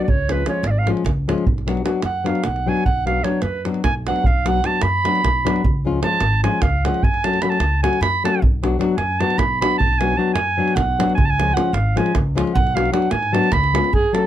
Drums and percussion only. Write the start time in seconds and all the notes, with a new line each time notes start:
0.08 davul low
0.29 davul high
0.46 davul high
0.64 davul high
0.87 davul high
0.97 davul high
1.06 davul high, davul low
1.29 davul high
1.38 davul high
1.47 davul low
1.58 davul high
1.68 davul high
1.77 davul high
1.86 davul high
2.02 davul high
2.26 davul high
2.35 davul high
2.44 davul high
2.56 davul high
2.77 davul high
2.86 davul low
3.07 davul high
3.24 davul high
3.42 davul high
3.65 davul high
3.74 davul high
3.84 davul high, davul low
4.07 davul high
4.16 davul high
4.24 davul low
4.46 davul high
4.64 davul high
4.82 davul high
5.05 davul high
5.15 davul high
5.25 davul high, davul low
5.47 davul high
5.56 davul high
5.64 davul low
6.03 davul high
6.20 davul high
6.44 davul high
6.62 davul high, davul low
6.85 davul high
6.94 davul high
7.03 davul low
7.14 davul high
7.24 davul high
7.34 davul high
7.42 davul high
7.52 davul high
7.60 davul high
7.84 davul high
7.93 davul high
8.03 davul high
8.25 davul high
8.35 davul high
8.43 davul low
8.64 davul high
8.81 davul high
8.98 davul high
9.21 davul high
9.30 davul high
9.39 davul high, davul low
9.62 davul high
9.72 davul high
9.80 davul low
10.01 davul high
10.36 davul high
10.68 davul high
10.77 davul high, davul low
11.00 davul high
11.10 davul high
11.18 davul low
11.40 davul high
11.57 davul high
11.74 davul high
11.97 davul high
12.06 davul high
12.15 davul high, davul low
12.38 davul high
12.47 davul high
12.56 davul low
12.67 davul high
12.77 davul high
12.86 davul high
12.94 davul high
13.02 davul high
13.11 davul high
13.23 davul high
13.35 davul high
13.43 davul high
13.52 davul high, davul low
13.64 davul high
13.75 davul high
13.84 davul high
13.93 davul low
14.15 davul high